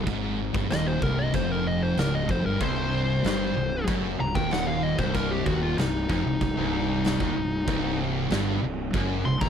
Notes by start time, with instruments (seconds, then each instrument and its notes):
0.05 fingered electric bass G#1, distorted electric guitar G#2, kick, crash
0.53 fingered electric bass G1, distorted electric guitar G2, kick
0.69 fingered electric bass D#1, distorted electric guitar D#2, lead electric guitar D#5, snare, crash
0.87 lead electric guitar C5
1.01 fingered electric bass C1, distorted electric guitar C2, lead electric guitar A#4, kick
1.19 lead electric guitar D#5
1.33 fingered electric bass F1, distorted electric guitar F2, lead electric guitar C5, kick, crash
1.52 lead electric guitar A#4
1.67 lead electric guitar D#5
1.83 lead electric guitar C5
1.96 fingered electric bass C#1, distorted electric guitar C#2, lead electric guitar A#4, snare, crash
2.15 lead electric guitar D#5
2.28 fingered electric bass F1, distorted electric guitar F2, lead electric guitar C5, kick
2.44 fingered electric bass G1, distorted electric guitar G2, lead electric guitar A#4
2.61 fingered electric bass C1, distorted electric guitar C2, lead electric guitar C5, kick, crash
3.24 fingered electric bass G1, distorted electric guitar G2, snare, crash
3.56 fingered electric bass C1, distorted electric guitar C2
3.87 fingered electric bass F#1, distorted electric guitar F#2, kick, crash
4.19 fingered electric bass C1, distorted electric guitar C2, lead electric guitar A#5
4.34 fingered electric bass D#1, distorted electric guitar D#2, lead electric guitar G5, kick
4.51 lead electric guitar F#5, snare, crash
4.67 lead electric guitar F5
4.83 lead electric guitar D#5
4.98 fingered electric bass C1, distorted electric guitar C2, lead electric guitar C5, kick
5.15 lead electric guitar A#4, kick, crash
5.31 lead electric guitar G4
5.46 fingered electric bass D#1, distorted electric guitar D#2, lead electric guitar F#4, kick
5.62 lead electric guitar F4
5.77 fingered electric bass C1, distorted electric guitar C2, lead electric guitar D#4, snare, crash
6.09 fingered electric bass F1, distorted electric guitar F2, lead electric guitar D#4, kick
6.26 fingered electric bass C1, distorted electric guitar C2
6.41 fingered electric bass C1, distorted electric guitar C2, kick, crash
6.57 fingered electric bass C1, distorted electric guitar C2
7.05 snare, crash
7.20 fingered electric bass D#1, distorted electric guitar D#2, kick
7.36 fingered electric bass C1, distorted electric guitar C2
7.67 fingered electric bass C1, distorted electric guitar C2, kick, crash
8.30 fingered electric bass G1, distorted electric guitar G2, snare, crash
8.62 fingered electric bass C1, distorted electric guitar C2
8.94 fingered electric bass F#1, distorted electric guitar F#2, kick, crash
9.25 fingered electric bass C1, distorted electric guitar C2, lead electric guitar C6
9.41 fingered electric bass D#1, distorted electric guitar D#2, lead electric guitar A#5, kick